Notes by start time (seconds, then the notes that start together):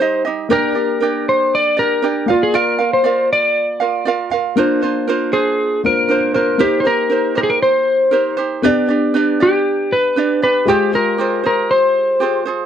Already playing: G3 D#4 C5
0.00 D#4 G4 C5 D#5
0.25 D#4 G4 D#5
0.49 A#3 D4 G4 A#4 D5
0.75 D4 G4 D5
1.00 D4 G4 A#4 D5
1.29 C5
1.55 D5
1.77 D4 G4 A#4 D5
2.02 D4 G4 A#4 D5
2.26 A#3 F4 A#4 D5 F5
2.30 F4
2.43 G#4
2.54 F4 A#4 D5 F5
2.79 F4 A#4 F5
2.93 C5
3.04 F4 A#4 D5 F5
3.33 D5
3.80 F4 A#4 F5
4.05 F4 A#4 D5 F5
4.31 F4 A#4 F5
4.56 A#3 D4 F4 A#4 C5
4.82 D4 F4 C5
5.08 D4 F4 A#4 C5
5.33 D4 F4 G#4 C5
5.84 A#3 D4 F4 A#4 C5
6.08 D4 F4 A#4 C5
6.34 D4 F4 A#4 C5
6.58 A#3 D#4 G4 A#4 C5
6.62 C5
6.80 C5
6.85 D#4 G4 A#4 C5
7.10 D#4 G4 A#4 C5
7.35 D#4 G4 A#4 C5
7.43 G#4
7.50 A#4
7.62 C5
8.11 D#4 G4 A#4 C5
8.37 D#4 G4 C5
8.62 B3 D4 G4 B4 D5
8.66 D5
8.89 D4 G4 D5
9.14 D4 G4 B4 D5
9.40 D4 G4 D5
9.92 B4
10.16 D4 G4 B4 D5
10.42 D4 G4 B4 D5
10.65 G#3 F4 G4 G#4
10.69 C5
10.93 F4 G#4 A#4 C5
11.18 F4 G4 G#4 C5
11.44 F4 G#4 A#4 C5
11.71 C5
12.20 F4 G4 G#4 C5
12.46 F4 G#4 C5